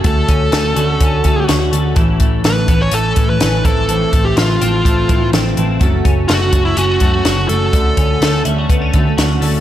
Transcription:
<<
  \new Staff \with { instrumentName = "Lead electric guitar" } { \time 4/4 \key d \lydian \tempo 4 = 125 a'2. r4 | r4 b'8. cis''16 a'8. b'8. a'8~ | a'8. g'16 f'2 r4 | r4 fis'8. e'16 fis'4. a'8~ |
a'4. r2 r8 | }
  \new Staff \with { instrumentName = "Steel-string acoustic guitar" } { \time 4/4 \key d \lydian <d a cis' fis'>4. <d a cis' fis'>4 <d a cis' fis'>16 <a cis' fis'>16 <d a cis' fis'>8 <d a cis' fis'>8 | <a, e a cis' e'>4. <e a cis' e'>4 <e a cis' e'>16 <a cis' e'>16 <e a cis' e'>8 <f a c' e'>8 | <a, f a c' e'>4. <f a c'>4 <f a c' e'>16 <a c' e'>16 <f a c' e'>8 <f a c' e'>8 | <fis a cis' fis'>4. <fis a cis' fis'>4 <fis a cis' fis'>16 <a cis' fis'>16 <fis a cis' fis'>8 <fis a cis' fis'>8 |
<d a cis' fis'>4. <d a cis' fis'>4 <d a cis' fis'>16 <a cis' fis'>16 <d a cis' fis'>8 <d a cis' fis'>8 | }
  \new Staff \with { instrumentName = "Clean electric guitar" } { \time 4/4 \key d \lydian a8 cis'8 a8 fis'8 cis'8 a8 fis'8 a8 | e8 a8 e8 b16 cis'16 a8 e8 cis'8 e8 | e8 a8 e8 c'8 a8 e8 c'8 e8 | a8 cis'8 a8 fis'8 cis'8 a8 fis'8 a8 |
a8 cis'8 a8 e'16 fis'16 b16 cis'16 a8 fis'8 a8 | }
  \new Staff \with { instrumentName = "Picked electric bass" } { \clef bass \time 4/4 \key d \lydian d,8 d,8 d,8 d,8 d,8 d8 d,8 d,8 | a,,8 a,,8 a,,8 a,,8 a,,8 a,8 a,,8 a,,8~ | a,,8 a,,8 a,,8 a,,8 a,,8 a,8 a,,8 a,,8 | fis,,8 fis,,8 fis,,8 fis,,8 fis,,8 fis,8 fis,,8 fis,,8 |
d,8 d,8 d,8 d,8 d,8 d8 d,8 d,8 | }
  \new DrumStaff \with { instrumentName = "Drums" } \drummode { \time 4/4 <hh bd>8 <hh bd>8 <hh sn>8 hh8 <hh bd>8 <hh bd>8 <hh sn>8 hh8 | <hh bd>8 <hh bd>8 <hh sn>8 <hh bd>8 hh8 <hh bd>8 <hh sn>8 <hh bd>8 | hh8 <hh bd>8 <hh sn>8 hh8 <hh bd>8 <hh bd>8 <hh sn>8 hh8 | <hh bd>8 <hh bd>8 <hh sn>8 <hh bd>8 hh8 <hh bd>8 <hh sn>8 hh8 |
<hh bd>8 <hh bd>8 <hh sn>8 hh8 <hh bd>8 <hh bd>8 <hh sn>8 hho8 | }
>>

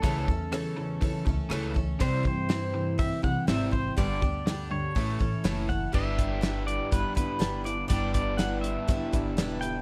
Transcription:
<<
  \new Staff \with { instrumentName = "Pedal steel guitar" } { \time 4/4 \key g \lydian \tempo 4 = 122 a'2~ a'8 r4. | c''8 c''4. e''8 fis''8 e''8 c''8 | d''4. cis''2 fis''8 | e''4. d''8 b'8 b'4 d''8 |
d''8 d''8 fis''8 e''2 g''8 | }
  \new Staff \with { instrumentName = "Twelve-string acoustic guitar" } { \time 4/4 \key g \lydian <cis e a cis' a'>8 <a cis' a'>8 <cis e a cis' a'>4 <e a cis' a'>8 <a cis' a'>8 <cis e a cis' a'>8 <a cis' a'>8 | <c e c' e' g'>8 <c' e' g'>8 <c e c' e' g'>4 <e c' e' g'>8 <c' e' g'>8 <c e c' e' g'>8 <c' e' g'>8 | <g, d g b d' g'>8 <g b d' g'>8 <g, d g b d' g'>4 <a cis' e' a'>8 <a cis' e' a'>8 <a, e a cis' e' a'>8 <a cis' e' a'>8 | <g d' e' b'>4 <g d' e' b'>4 <g d' e' b'>8 <d' e' b'>8 <g d' e' b'>8 <d' e' b'>8 |
<g d' e' b'>4 <g d' e' b'>4 <g d' e' b'>8 <d' e' b'>8 <g d' e' b'>8 <d' e' b'>8 | }
  \new Staff \with { instrumentName = "Overdriven electric guitar" } { \clef bass \time 4/4 \key g \lydian <cis e a>8 <cis e>8 <cis e>8 <cis e>8 <cis e>8 <cis e>8 <cis e a>8 <cis e>8 | <c e g>8 <c e>8 <c e>8 <c e>8 <c e>8 <c e>8 <c e g>8 <c e>8 | <g, d g>8 <g, d>8 <g, d>8 <g, d>8 <a, e a>8 <a, e>8 <a, e a>8 <a, e>8 | <g b d' g'>1 |
<g b d' g'>1 | }
  \new Staff \with { instrumentName = "Upright bass" } { \clef bass \time 4/4 \key g \lydian cis,8 e,2 cis,16 r16 cis,4 | c,8 g,2 c,16 r16 gis,,4 | g,,8 d,4. a,,8 a,,16 r16 fis,,4 | g,,2 g,,16 r16 g,,16 r16 g,,4 |
g,,2 g,,16 r16 g,,8 e,,4 | }
  \new DrumStaff \with { instrumentName = "Drums" } \drummode { \time 4/4 <hho bd>8 bd8 <hho ss>4 <hho bd>8 bd8 <hho ss>8 bd8 | <hho bd>8 bd8 <hho sn>4 <hho bd>8 bd8 <hho sn>8 bd8 | <hho bd>8 bd8 <hho sn>4 <hho bd>8 bd8 <hho sn>8 bd8 | <cymc bd>8 <hh bd>8 <hh sn>8 hh8 <hh bd>8 <hh bd>8 <hh sn>8 hh8 |
<hh bd>8 <hh bd>8 <hh sn>8 hh8 <hh bd>8 <hh bd>8 <hh sn>8 hh8 | }
>>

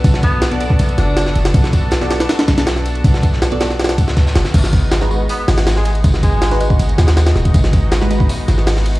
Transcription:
<<
  \new Staff \with { instrumentName = "Synth stab" } { \time 4/4 \key b \lydian \tempo 4 = 160 r4 r16 <b fis' a' d''>16 <b fis' a' d''>16 r2 r16 | r4 r16 <b fis' a' d''>16 <b fis' a' d''>16 r2 r16 | r4 r16 <b fis' a' d''>16 <b fis' a' d''>16 r2 r16 | r4 r16 <gis dis' fis' b'>16 <gis dis' fis' b'>16 r2 r16 |
r4 r16 <gis dis' fis' b'>16 <gis dis' fis' b'>16 r2 r16 | r4 r16 <gis dis' fis' b'>16 <gis dis' fis' b'>16 r2 r16 | }
  \new Staff \with { instrumentName = "Analog synth pad" } { \time 4/4 \key b \lydian <b d' fis' a'>1~ | <b d' fis' a'>1~ | <b d' fis' a'>1 | <gis b dis' fis'>1~ |
<gis b dis' fis'>1~ | <gis b dis' fis'>1 | }
  \new Staff \with { instrumentName = "Tenor saxophone" } { \time 4/4 \key b \lydian r8 b8 r4. d'4 r8 | r1 | r1 | r2 b16 b16 r8. gis16 gis16 r16 |
r8 gis4. r2 | r1 | }
  \new Staff \with { instrumentName = "808-style bass" } { \clef bass \time 4/4 \key b \lydian b,,2 b,,8 fis,,4 fis,,8 | b,,2 r8 b,,4. | b,,2~ b,,8 d,4 fis,,8 | gis,,2 r8 gis,,4. |
gis,,2 gis,,8 dis,4 dis,,8 | gis,,2 r8 gis,,4. | }
  \new DrumStaff \with { instrumentName = "Drums" } \drummode { \time 4/4 <bd cymr tamb>16 sn16 <bd cymr tamb>8 <cymr sn tamb>16 <hh cymr>16 <cymr tamb>16 bd16 <cymr tamb>16 cymr16 <cymr sn>8 <cymr sn tamb>16 sn16 <cymr tamb>16 <cymr sn>16 | <bd cymr tamb>16 sn16 <bd cymr tamb>8 <cymr sn tamb>16 sn16 <cymr sn tamb>16 <cymr sn>16 <cymr sn tamb>16 <cymr sn>16 <cymr sn tamb>16 <cymr sn>16 <cymr sn tamb>16 sn16 <cymr tamb>16 cymr16 | <bd cymr tamb>16 sn16 <bd cymr tamb>16 sn16 <cymr sn tamb>16 cymr16 <cymr sn tamb>16 sn16 <cymr sn>32 <cymr sn>32 <cymr sn>16 <bd cymr tamb>16 sn16 <bd cymr sn tamb>16 <sn tamb>16 <cymr sn tamb>16 <sn tamb>16 | <cymc bd cymr tamb>16 sn16 <bd cymr tamb>8 <cymr sn tamb>16 sn16 tamb8 <hho tamb>8 <hho cymr sn>16 <cymr sn>16 <cymr sn tamb>16 sn16 <cymr tamb>16 cymr16 |
<bd cymr tamb>16 sn16 <bd cymr tamb>8 <cymr sn tamb>16 <hh cymr>16 <cymr tamb>16 bd16 <cymr tamb>16 cymr16 <cymr sn tamb>16 <cymr sn>16 <cymr sn tamb>16 <cymr sn>16 <sn tamb>16 <bd cymr>16 | <bd cymr tamb>16 sn16 <bd cymr tamb>8 <cymr sn tamb>16 sn16 <cymr tamb>16 bd16 <hho tamb>8 <cymr sn tamb>16 sn16 <hho cymr sn>16 sn16 <cymr tamb>16 cymr16 | }
>>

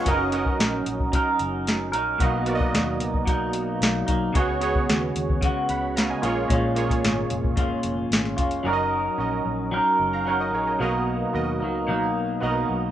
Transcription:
<<
  \new Staff \with { instrumentName = "Synth keys" } { \time 4/4 \key fis \major \tempo 4 = 112 << { <gis' cis''>16 r2. r8. | r1 | r2 r8 <fis'' b''>8 <eis'' ais''>16 <dis'' gis''>8 r16 | r1 |
r2 r8. <eis'' ais''>16 <cis'' fis''>16 <ais' dis''>16 <gis' cis''>16 <ais' dis''>16~ | <ais' dis''>16 r2. r8. | } \\ { <cis' fis' ais' dis''>8 <cis' fis' ais' dis''>4. r2 | <b fis' ais' dis''>8 <b fis' ais' d'' dis''>4. r2 | <b fis' gis' cis''>8 <b fis' gis' cis''>4. r4. <ais eis' gis' cis''>8~ | <ais eis' gis' cis''>8 <ais eis' gis' cis''>4. r2 |
<cis' fis' ais' d'' dis''>4 <cis' fis' ais' dis''>4. r4. | <b fis' ais' dis''>4 <b fis' ais' dis''>4. r8 <b fis' ais' dis''>4 | } >> }
  \new Staff \with { instrumentName = "Clean electric guitar" } { \time 4/4 \key fis \major <fis cis' dis' ais'>2 <fis cis' dis' ais'>4. <cis' dis' ais'>8 | <b, fis ais dis'>2 <b, fis ais dis'>4. <fis ais dis'>8 | <cis gis b fis'>2 <cis gis b fis'>4. <gis cis' eis'>8 | <ais, gis cis' eis'>2 <ais, gis cis' eis'>4. <gis cis' eis'>8 |
<fis cis' dis' ais'>2 <fis cis' dis' ais'>4 <fis cis' dis' ais'>4 | <b, fis ais dis'>4. <fis ais dis'>8 <b, fis ais dis'>4 <b, fis ais dis'>4 | }
  \new Staff \with { instrumentName = "Fingered electric bass" } { \clef bass \time 4/4 \key fis \major fis,,4 ais,,8 ais,,8. r16 fis,,4 ais,,8 | b,,4 dis,8 cis,4 b,,8 b,,8 b,,8 | cis,4 dis,8 dis,8. r16 cis,4 ais,,8 | ais,,4 gis,,8 eis,,4 eis,,8 gis,,8 eis,,8 |
fis,,4 ais,,8 ais,,8. r16 fis,,4 ais,,8 | b,,4 dis,8 cis,4 b,,8 b,,8 b,,8 | }
  \new DrumStaff \with { instrumentName = "Drums" } \drummode { \time 4/4 <hh bd>8 hh16 bd16 <hh sn>8 hh16 bd16 <hh bd>8 hh8 <hh sn>8 hh8 | <hh bd>8 hh16 bd16 <hh sn>8 hh16 bd16 <hh bd>8 hh8 <hh sn>8 <hh bd>8 | <hh bd>8 hh16 bd16 <hh sn>8 hh16 bd16 <hh bd>8 hh8 <hh sn>8 hh8 | <hh bd>8 hh16 <hh bd>16 <hh sn>8 hh16 bd16 <hh bd>8 hh8 <hh sn>16 sn16 <hh bd>16 hh16 |
r4 r4 r4 r4 | r4 r4 r4 r4 | }
>>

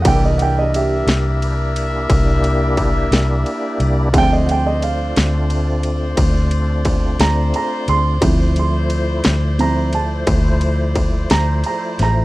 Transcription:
<<
  \new Staff \with { instrumentName = "Grand piano" } { \time 12/8 \key d \minor \tempo 4. = 59 << { <fis'' g''>16 ees''16 <fis'' g''>16 ees''16 <g' e''>2. r2 | <fis'' g''>16 ees''16 <fis'' g''>16 ees''16 f''2. r8 bes''8 bes''8 c'''8~ | c'''8 c'''4. bes''8 a''4 r4 bes''8 bes''8 bes''8 | } \\ { <e bes d'>1. | <f c' e''>4. r1 r8 | <f c' e'>4. r8 <f c' e'>8 r2. r8 | } >> }
  \new Staff \with { instrumentName = "Horn section" } { \time 12/8 \key d \minor << { <bes' e''>1. | c''1.~ | c''1. | } \\ { d''1.~ | d''1.~ | d''1. | } >> }
  \new Staff \with { instrumentName = "Tonewheel organ" } { \time 12/8 \key d \minor <bes d' e' g'>1. | <a c' d' f'>1. | <f a e' c''>1. | }
  \new Staff \with { instrumentName = "Fingered electric bass" } { \clef bass \time 12/8 \key d \minor c,4. c,4. c,4. c,8 r8 c,8 | d,4. d,4. d,4. d,8 r8 d,8 | d,4. d,4. d,4. d,8 r8 a,,8 | }
  \new DrumStaff \with { instrumentName = "Drums" } \drummode { \time 12/8 <bd cymr>8 cymr8 cymr8 <cymr sn>8 cymr8 cymr8 <bd cymr>8 cymr8 <bd cymr>8 <cymr sn>8 cymr8 cymr8 | <bd cymr>8 cymr8 cymr8 <cymr sn>8 cymr8 cymr8 <bd cymr>8 cymr8 <bd cymr>8 <cymr sn>8 cymr8 cymr8 | <bd cymr>8 cymr8 cymr8 <cymr sn>8 cymr8 cymr8 <bd cymr>8 cymr8 <bd cymr>8 <cymr sn>8 cymr8 <cymr sn>8 | }
>>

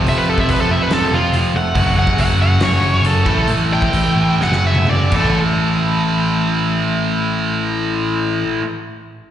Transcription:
<<
  \new Staff \with { instrumentName = "Lead electric guitar" } { \time 4/4 \key fis \phrygian \tempo 4 = 128 e''16 b'16 a'16 e''16 b'16 a'16 e''16 b'16 a'8 f'8 r8 fis''8~ | fis''8 fis''8 fis''8 fis''8 cis''4 a'4 | r8 g''4. fis''8 e''8 d''8 a'8 | r1 |
r1 | }
  \new Staff \with { instrumentName = "Distorted electric guitar" } { \clef bass \time 4/4 \key fis \phrygian <f, c f>2.~ <f, c f>8 r8 | <fis, cis fis>2.~ <fis, cis fis>8 <a, e a>8~ | <a, e a>2 <fis, cis fis>4. <a, e a>8~ | <a, e a>1~ |
<a, e a>1 | }
  \new Staff \with { instrumentName = "Overdriven electric guitar" } { \clef bass \time 4/4 \key fis \phrygian <f, c f>4. <f, c f>2 r8 | <fis, cis fis>2 <fis, cis fis>4. <a, e a>8~ | <a, e a>4. <a, e a>8 <fis, cis fis>4. <a, e a>8~ | <a, e a>1~ |
<a, e a>1 | }
  \new Staff \with { instrumentName = "Picked electric bass" } { \clef bass \time 4/4 \key fis \phrygian f,,4 f,,8 f,,8 f,,8 f,,8 f,,8 f,,8 | fis,,8 fis,,8 fis,,8 fis,,8 fis,,8 fis,,8 fis,,8 a,,8 | a,,4 a,,8 a,,8 fis,,8 fis,,8 fis,,8 a,,8~ | a,,1~ |
a,,1 | }
  \new DrumStaff \with { instrumentName = "Drums" } \drummode { \time 4/4 hho8. bd16 hho4 <hho sn>4 hho4 | <hho bd>8. bd16 hho4 <hho sn>4 hho8 bd8 | hho8. bd16 hho4 sn16 sn8 tommh16 toml8 <cymc bd>8 | r4 r4 r4 r4 |
r4 r4 r4 r4 | }
>>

